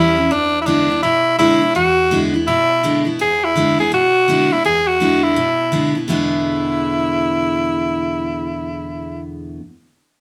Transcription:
0.00 0.28 E2 medium
0.00 0.16 E3 medium
0.00 0.16 G3 medium
0.00 0.17 C#4 medium
0.00 0.15 E4 medium
0.00 0.34 E4 loud
0.17 0.31 C#4 soft
0.17 0.30 E4 medium
0.31 1.00 E2 medium
0.31 0.61 D4 loud
0.62 0.68 E4 medium
0.66 0.88 D3 medium
0.66 0.88 G#3 medium
0.66 0.89 B3 medium
0.66 1.02 D4 medium
0.66 0.88 E4 medium
0.90 1.04 B3 medium
0.90 1.03 E4 medium
1.03 1.73 B2 medium
1.03 1.36 E4 loud
1.39 1.60 D3 medium
1.39 1.61 G#3 medium
1.39 1.61 B3 loud
1.39 1.73 E4 loud
1.39 1.61 E4 loud
1.62 1.76 B3 soft
1.62 1.75 E4 medium
1.75 2.45 E2 medium
1.75 2.20 F#4 loud
2.11 2.33 D3 medium
2.11 2.33 G#3 medium
2.11 2.33 B3 medium
2.11 2.33 E4 medium
2.34 2.48 B3 medium
2.34 2.47 E4 medium
2.47 3.17 B2 medium
2.47 3.02 E4 loud
2.83 3.05 D3 medium
2.83 3.05 G#3 medium
2.83 3.06 B3 medium
2.83 3.04 E4 medium
3.05 3.19 B3 soft
3.05 3.19 E4 medium
3.19 3.89 E2 medium
3.19 3.46 G#4 loud
3.44 3.79 E4 medium
3.55 3.77 D3 medium
3.55 3.78 G#3 medium
3.55 3.78 B3 medium
3.55 3.77 E4 medium
3.79 3.93 B3 soft
3.79 3.92 E4 medium
3.79 3.92 G#4 loud
3.92 4.61 B2 medium
3.92 4.54 F#4 loud
4.28 4.50 D3 medium
4.28 4.50 G#3 medium
4.28 4.50 B3 medium
4.28 4.49 E4 medium
4.51 4.65 B3 soft
4.51 4.64 E4 medium
4.51 4.65 E4 loud
4.64 5.34 E2 medium
4.64 4.89 G#4 loud
4.87 5.25 F#4 loud
5.00 5.35 D3 medium
5.00 5.35 G#3 medium
5.00 5.35 B3 loud
5.00 5.36 E4 medium
5.23 5.95 E4 loud
5.36 6.06 B2 medium
5.72 5.94 D3 medium
5.72 5.94 G#3 medium
5.72 5.94 B3 medium
5.72 5.94 E4 medium
5.95 6.09 B3 soft
5.95 6.08 E4 medium
6.08 9.58 E2 medium
6.08 9.58 B2 medium
6.08 9.59 D3 medium
6.08 9.60 G#3 medium
6.08 9.60 B3 medium
6.08 9.24 E4 medium
6.08 9.60 E4 medium

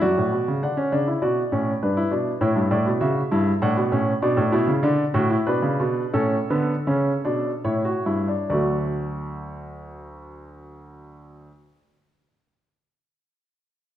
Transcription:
0.01 0.16 F#2 medium
0.01 0.60 F#4 medium
0.01 0.60 D5 medium
0.18 0.32 A2 medium
0.32 0.47 B2 medium
0.48 0.62 C#3 medium
0.63 0.82 D3 medium
0.63 0.77 D4 medium
0.63 1.21 F#5 medium
0.77 0.92 C#4 medium
0.92 1.11 C#3 medium
0.92 1.07 D4 medium
1.07 1.22 E4 medium
1.22 1.41 B2 medium
1.22 1.41 F#4 medium
1.22 1.81 D5 medium
1.52 1.71 A2 medium
1.52 1.71 C#4 medium
1.83 2.01 G2 medium
1.83 1.97 D4 medium
1.83 2.41 B4 medium
1.97 2.12 E4 medium
2.11 2.30 B2 medium
2.11 2.30 D4 medium
2.41 2.56 A2 medium
2.41 3.00 E4 medium
2.41 2.60 C#5 medium
2.56 2.71 G2 medium
2.71 2.86 A2 medium
2.71 2.90 D5 medium
2.86 3.01 B2 medium
3.01 3.20 C#3 medium
3.01 3.20 F#4 medium
3.01 3.60 E5 medium
3.31 3.51 G2 medium
3.31 3.50 E4 medium
3.62 3.77 A2 medium
3.62 3.81 D4 medium
3.62 4.21 F#5 medium
3.77 3.92 B2 medium
3.92 4.11 A2 medium
3.92 4.11 C#4 medium
4.22 4.37 B2 medium
4.22 4.41 D4 medium
4.22 5.44 D5 medium
4.37 4.52 A2 medium
4.52 4.68 B2 loud
4.52 4.72 E4 medium
4.67 4.83 C#3 medium
4.83 5.03 D3 loud
4.83 5.03 D4 medium
5.14 5.35 A2 loud
5.14 5.30 F#4 medium
5.30 5.47 E4 medium
5.47 5.63 B2 medium
5.47 6.13 D4 medium
5.47 6.13 B4 medium
5.62 5.80 C#3 medium
5.80 6.01 B2 medium
6.14 6.36 A2 medium
6.14 6.36 C#4 medium
6.14 7.60 A4 medium
6.50 6.73 D3 medium
6.50 6.73 B3 medium
6.87 7.11 C#3 medium
6.87 7.11 C#4 medium
7.25 7.50 B2 medium
7.25 7.49 D4 medium
7.64 7.90 A2 medium
7.64 7.85 E4 medium
7.64 8.47 C#5 medium
7.85 8.05 F#4 medium
8.06 8.33 G2 medium
8.06 8.27 E4 medium
8.28 8.49 D4 medium
8.50 11.47 D2 medium
8.50 11.50 F#3 medium
8.50 11.50 A3 medium
8.50 11.47 F#4 medium
8.50 11.47 D5 medium

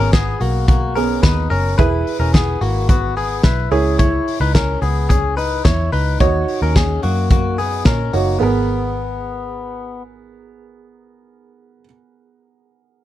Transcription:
0.00 0.34 G#1 medium
0.00 0.93 B3 medium
0.00 0.13 C#4 medium
0.00 0.93 G#4 medium
0.00 0.13 A#4 medium
0.00 0.93 A#4 medium
0.13 0.40 B3 medium
0.13 0.41 G#4 medium
0.13 kick loud
0.13 snare loud
0.13 closed hi-hat medium
0.41 1.20 B1 medium
0.41 0.68 A#3 medium
0.41 0.67 F#4 medium
0.41 open hi-hat medium
0.68 0.96 A#3 medium
0.68 0.96 F#4 medium
0.68 kick loud
0.68 closed hi-hat medium
0.96 1.79 B3 medium
0.96 1.24 C#4 medium
0.96 1.78 G#4 soft
0.96 1.22 A#4 medium
0.96 1.79 A#4 medium
0.96 open hi-hat medium
1.23 1.47 D#2 medium
1.23 1.51 D#4 medium
1.23 1.50 B4 medium
1.23 kick loud
1.23 snare loud
1.23 closed hi-hat medium
1.50 1.74 F#1 medium
1.50 1.79 C#4 medium
1.50 1.77 A#4 medium
1.50 open hi-hat medium
1.78 2.02 E1 loud
1.78 2.18 E4 medium
1.78 3.68 E4 medium
1.78 3.68 G#4 medium
1.78 2.17 B4 medium
1.78 3.68 B4 medium
1.78 kick loud
1.78 closed hi-hat medium
2.07 open hi-hat medium
2.20 2.55 E1 loud
2.20 2.34 C#4 medium
2.20 2.34 A#4 medium
2.34 2.61 B3 medium
2.34 2.62 G#4 medium
2.34 kick loud
2.34 snare loud
2.34 closed hi-hat medium
2.61 3.40 G#1 medium
2.61 2.90 A#3 medium
2.61 2.88 F#4 medium
2.61 open hi-hat medium
2.89 3.16 B3 medium
2.89 3.17 F#4 medium
2.89 kick loud
2.89 closed hi-hat medium
3.17 3.44 B3 medium
3.17 3.44 G#4 medium
3.17 open hi-hat medium
3.43 3.68 B1 medium
3.43 3.72 E4 medium
3.43 3.71 B4 medium
3.43 kick loud
3.43 snare medium
3.43 closed hi-hat medium
3.71 4.19 C#2 loud
3.71 3.99 C#4 medium
3.71 5.89 E4 medium
3.71 5.89 G#4 medium
3.71 3.99 G#4 medium
3.71 5.89 C#5 medium
3.71 open hi-hat medium
3.99 4.39 E4 medium
3.99 4.38 C#5 medium
3.99 kick loud
3.99 closed hi-hat medium
4.28 open hi-hat medium
4.40 4.76 C#2 medium
4.40 4.55 D#4 medium
4.40 4.54 B4 medium
4.55 4.83 C#4 medium
4.55 4.81 A#4 medium
4.55 kick medium
4.55 snare loud
4.55 closed hi-hat medium
4.82 5.61 C#2 medium
4.82 5.10 B3 medium
4.82 5.08 G#4 medium
4.82 open hi-hat medium
5.09 5.38 C#4 medium
5.09 5.37 G#4 medium
5.09 kick loud
5.09 closed hi-hat medium
5.37 5.65 D#4 medium
5.37 5.64 B4 medium
5.37 open hi-hat medium
5.65 5.89 E2 medium
5.65 5.93 E4 medium
5.65 5.92 C#5 medium
5.65 kick loud
5.65 snare medium
5.65 closed hi-hat medium
5.92 6.16 C#2 medium
5.92 6.21 D#4 medium
5.92 6.20 B4 medium
5.92 open hi-hat medium
6.20 6.44 D#2 medium
6.20 8.10 D#4 medium
6.20 8.10 F#4 medium
6.20 6.60 F#4 medium
6.20 6.59 C#5 medium
6.20 8.10 C#5 medium
6.20 kick loud
6.20 closed hi-hat medium
6.48 open hi-hat medium
6.62 6.97 D#2 medium
6.62 6.75 C#4 medium
6.62 6.76 A#4 medium
6.76 7.04 C#4 medium
6.76 7.03 G#4 medium
6.76 kick loud
6.76 snare loud
6.76 closed hi-hat medium
7.03 7.82 F#2 medium
7.03 7.31 A#3 medium
7.03 7.30 F#4 medium
7.03 open hi-hat medium
7.30 7.59 A#3 medium
7.30 7.58 F#4 medium
7.30 kick loud
7.30 closed hi-hat medium
7.58 7.87 B3 medium
7.58 7.86 G#4 medium
7.58 open hi-hat medium
7.85 8.09 A#2 medium
7.85 8.14 C#4 medium
7.85 8.14 A#4 medium
7.85 kick loud
7.85 snare loud
7.85 closed hi-hat medium
8.13 8.37 F#1 medium
8.13 8.41 A#3 medium
8.13 8.41 D#4 soft
8.13 8.40 F#4 medium
8.13 8.41 F#4 soft
8.13 8.41 C#5 medium
8.13 open hi-hat medium
8.39 11.84 G#1 medium
8.39 11.81 B3 medium
8.39 10.02 B3 medium
8.39 11.83 G#4 medium
8.43 11.85 A#4 medium

